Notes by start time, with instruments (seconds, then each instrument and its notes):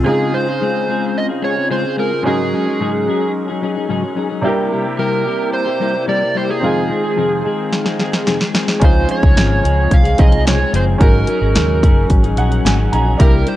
0.04 upright piano C#3 C4 D#4 F4, clean electric guitar C#3 G#3 C4, electric slide guitar G#4
0.08 clean electric guitar F4 G#4, upright piano G#4
0.33 clean electric guitar G#3 C4 F4 G#4, electric slide guitar C5
0.47 clean electric guitar C4 F4 G#4
0.61 clean electric guitar C#3 G#3 C4 F4 G#4
0.88 clean electric guitar G#3 C4 F4 G#4
1.18 electric slide guitar D#5
1.29 clean electric guitar C4 F4 G#4
1.42 clean electric guitar G#3 C4 F4 G#4, electric slide guitar C#5
1.56 clean electric guitar C4 F4 G#4
1.70 clean electric guitar C#3 G#3 C4 F4 G#4, electric slide guitar C5
1.84 clean electric guitar C4 F4 G#4
1.97 clean electric guitar G#3 C4 F4 G#4, electric slide guitar A#4
2.11 clean electric guitar C4 F4 G#4
2.23 clean electric guitar G#2 C#3 F#3 C#4, upright piano G#3 C#4 D#4 F#4, electric slide guitar G#4
2.27 clean electric guitar D#4 G#4, upright piano A#4
2.52 clean electric guitar F#3 C#4 D#4 G#4
2.66 clean electric guitar F#3 C#4 D#4 G#4
2.80 clean electric guitar G#2 C#3 F#3 C#4 D#4 G#4
3.07 clean electric guitar F#3 C#4 D#4 G#4
3.48 clean electric guitar F#3 C#4 D#4 G#4
3.62 clean electric guitar F#3 C#4 D#4 G#4
3.75 clean electric guitar F#3 C#4 D#4 G#4
3.88 clean electric guitar G#2 C#3 F#3 C#4 D#4 G#4
4.02 clean electric guitar F#3 C#4 D#4 G#4
4.15 clean electric guitar F#3 C#4 D#4 G#4
4.29 clean electric guitar F#3 C#4 D#4 G#4
4.41 upright piano C3 D4 E4 G4, clean electric guitar C3 G3 A#3 E4 G4
4.47 upright piano A#4
4.71 clean electric guitar G3 A#3 E4 G4
4.84 clean electric guitar A#3 E4 G4
4.98 clean electric guitar C3 G3 A#3 E4 G4, electric slide guitar A#4
5.25 clean electric guitar G3 A#3 E4 G4
5.53 electric slide guitar C5
5.66 clean electric guitar A#3 E4 G4
5.80 clean electric guitar G3 A#3 E4 G4
5.94 clean electric guitar A#3 E4 G4
6.07 clean electric guitar C3 G3 A#3 E4 G4, electric slide guitar D5
6.21 clean electric guitar A#3 E4 G4
6.35 clean electric guitar G3 A#3 E4 G4, electric slide guitar C5
6.48 clean electric guitar A#3 E4 G4, electric slide guitar G#4
6.60 clean electric guitar F2 C3 D#3 G#3 C4 G#4, upright piano C4 D#4 F4
6.65 upright piano G#4
6.89 clean electric guitar D#3 G#3 C4 G#4
7.03 clean electric guitar D#3 G#3 C4 G#4
7.16 clean electric guitar F2 C3 D#3 G#3 C4 G#4
7.44 clean electric guitar D#3 G#3 C4 G#4
7.73 snare
7.85 clean electric guitar D#3 G#3 C4 G#4, snare
7.99 clean electric guitar D#3 G#3 C4 G#4, snare
8.12 clean electric guitar D#3 G#3 C4 G#4, snare
8.26 clean electric guitar F2 C3 D#3 G#3 C4 G#4, snare
8.40 clean electric guitar D#3 G#3 C4 G#4, snare
8.53 clean electric guitar D#3 G#3 C4 G#4, snare
8.68 snare
8.80 fingered electric bass C#2, clean electric guitar C#3 F3 G#3 C4 G#4, upright piano C#4 D#4 F4, kick, closed hi-hat
8.85 upright piano G#4, electric slide guitar C5
9.09 clean electric guitar F3 G#3 C4 G#4, electric slide guitar C#5, closed hi-hat
9.22 fingered electric bass C#2, clean electric guitar G#3 C4 G#4, kick
9.36 fingered electric bass G#1, clean electric guitar C#3 F3 G#3 C4 G#4, snare, closed hi-hat
9.63 fingered electric bass C#2, clean electric guitar F3 G#3 C4 G#4, closed hi-hat
9.91 fingered electric bass C2, electric slide guitar F5, kick, closed hi-hat
10.04 clean electric guitar G#3 C4 G#4, closed hi-hat
10.18 fingered electric bass C2, clean electric guitar F3 G#3 C4 G#4, upright piano C4 D#4 F4 G#4, electric slide guitar D#5, kick, closed hi-hat
10.32 clean electric guitar G#3 C4 G#4, closed hi-hat
10.46 clean electric guitar C#3 F3 G#3 C4 G#4, electric slide guitar C#5, snare, closed hi-hat
10.59 clean electric guitar G#3 C4 G#4
10.73 fingered electric bass F#1, clean electric guitar F3 G#3 C4 G#4, electric slide guitar C5, closed hi-hat
10.98 fingered electric bass G#1, clean electric guitar G#2 C#3 F#3 C#4 D#4, upright piano C#4 D#4 F#4, electric slide guitar A#4, kick, closed hi-hat
11.02 clean electric guitar G#4, upright piano A#4
11.27 clean electric guitar F#3 C#4 D#4 G#4, closed hi-hat
11.41 fingered electric bass G#1, clean electric guitar F#3 C#4 D#4 G#4
11.55 fingered electric bass D#2, clean electric guitar G#2 C#3 F#3 C#4 D#4 G#4, snare, closed hi-hat
11.82 fingered electric bass F#1, clean electric guitar F#3 C#4 D#4 G#4, kick, closed hi-hat
12.10 fingered electric bass G#1, kick, closed hi-hat
12.23 clean electric guitar F#3 C#4 D#4 G#4, closed hi-hat
12.37 fingered electric bass A#1, clean electric guitar F#3 C#4 D#4 G#4, upright piano F#5, closed hi-hat
12.51 clean electric guitar F#3 C#4 D#4 G#4, closed hi-hat
12.65 fingered electric bass G#1, clean electric guitar G#2 C#3 F#3 C#4 D#4 G#4, upright piano G#5, snare, closed hi-hat
12.78 clean electric guitar F#3 C#4 D#4 G#4
12.92 fingered electric bass A#1, clean electric guitar F#3 C#4 D#4 G#4, upright piano A#5, closed hi-hat
13.06 clean electric guitar F#3 C#4 D#4 G#4
13.18 fingered electric bass C2, clean electric guitar C3 G3 A#3 E4 G4, upright piano D4 E4 G4, electric slide guitar A#4, kick, closed hi-hat
13.23 upright piano A#4
13.47 clean electric guitar G3 A#3 E4 G4, electric slide guitar C5, closed hi-hat